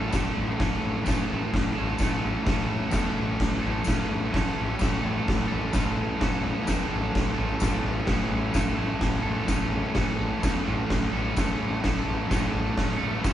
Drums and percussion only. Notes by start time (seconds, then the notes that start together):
0.13 kick, snare, floor tom, tambourine
0.37 floor tom
0.60 kick, snare, floor tom
0.84 floor tom
1.06 kick, snare, floor tom, tambourine
1.31 floor tom
1.54 kick, snare, floor tom
1.78 floor tom
1.98 kick, snare, floor tom, tambourine
2.23 floor tom
2.47 kick, snare, floor tom
2.70 floor tom
2.91 kick, snare, floor tom, tambourine
3.17 floor tom
3.40 kick, snare, floor tom
3.64 floor tom
3.84 kick, snare, floor tom, tambourine
4.11 floor tom
4.34 kick, snare, floor tom
4.58 floor tom
4.79 kick, snare, floor tom, tambourine
5.05 floor tom
5.28 kick, snare, floor tom
5.52 floor tom
5.73 kick, snare, floor tom, tambourine
5.97 floor tom
6.21 kick, snare, floor tom
6.44 floor tom
6.67 kick, snare, floor tom, tambourine
6.92 floor tom
7.15 kick, snare, floor tom
7.39 floor tom
7.60 kick, snare, floor tom, tambourine
7.84 floor tom
8.07 kick, snare, floor tom
8.32 floor tom
8.54 kick, snare, floor tom, tambourine
8.79 floor tom
9.01 kick, snare, floor tom
9.25 floor tom
9.48 kick, snare, floor tom, tambourine
9.71 floor tom
9.95 kick, snare, floor tom
10.19 floor tom
10.43 kick, snare, floor tom, tambourine
10.67 floor tom
10.90 kick, snare, floor tom
11.13 floor tom
11.37 kick, snare, floor tom, tambourine
11.61 floor tom
11.84 kick, snare, floor tom
12.08 floor tom
12.31 kick, snare, floor tom, tambourine
12.54 floor tom
12.77 kick, snare, floor tom
13.01 floor tom
13.24 kick, snare, floor tom, tambourine